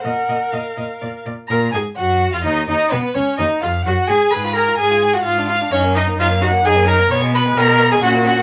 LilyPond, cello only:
\new Staff \with { instrumentName = "Cello" } { \clef bass \time 3/4 \key aes \dorian \tempo 4 = 128 bes,8 bes,8 bes,8 bes,8 bes,8 bes,8 | bes,8 aes,8 ges,8. f,16 ees,8 ees,8 | ces8 des,8 ees,8 f,8 ges,8 aes,8 | aes,4 aes,4 aes,4 |
ges,4 ges,4 ges,4 | ces4 ces4 bes,4 | }